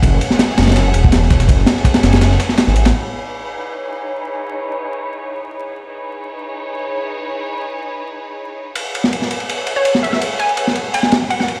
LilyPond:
<<
  \new Staff \with { instrumentName = "Synth pluck" } { \time 4/4 \key cis \minor \tempo 4 = 165 r1 | r1 | r1 | r1 |
r1 | r1 | r2 r8. cis''8 r16 e''16 e''16 | r8 gis''8 r4 gis''8 r8 fis''16 fis''16 r8 | }
  \new Staff \with { instrumentName = "String section" } { \time 4/4 \key cis \minor <gis' a' cis'' e'' fis''>2.~ <gis' a' cis'' e'' fis''>8 <gis' a' cis'' e'' fis''>8 | <gis' a' cis'' e'' fis''>2.~ <gis' a' cis'' e'' fis''>16 <gis' a' cis'' e'' fis''>16 <gis' a' cis'' e'' fis''>8 | <dis' e' gis' b' cis''>1~ | <dis' e' gis' b' cis''>1 |
<dis' e' gis' b' cis''>1~ | <dis' e' gis' b' cis''>1 | <gis' a' cis'' e'' fis''>1~ | <gis' a' cis'' e'' fis''>1 | }
  \new Staff \with { instrumentName = "Detuned saw bass" } { \clef bass \time 4/4 \key cis \minor fis,,8 r4 fis,,4 e,,4. | fis,,8 r4 fis,,4 r8. gis,,16 a,,8 | r1 | r1 |
r1 | r1 | r1 | r1 | }
  \new DrumStaff \with { instrumentName = "Drums" } \drummode { \time 4/4 <hh bd cymr>8 <hh cymr>16 sn16 <hh cymr sn>16 sn16 <hh cymr sn>32 <cymr sn>32 <cymr sn>32 <cymr sn>32 <hh cymr sn>8 <hh cymr>16 bd16 <hh cymr sn>16 sn16 <hh bd cymr sn>16 <hh sn>16 | <hh bd cymr>16 sn16 <hh cymr sn>16 sn16 <hh bd cymr sn>16 <cymr sn>16 <hh cymr sn>16 <cymr sn>16 <hh cymr sn>16 sn16 <hh cymr sn>16 sn16 <hh cymr sn>16 sn16 <hh cymr>16 <hh cymr sn>16 | r4 r4 r4 r4 | r4 r4 r4 r4 |
r4 r4 r4 r4 | r4 r4 r4 r4 | cymr8 cymr16 sn16 cymr16 sn16 cymr16 cymr16 cymr8 cymr8 cymr16 sn16 cymr16 sn16 | cymr8 cymr16 cymr16 cymr16 sn16 cymr8 cymr16 sn16 <cymr sn>16 sn16 cymr16 sn16 cymr8 | }
>>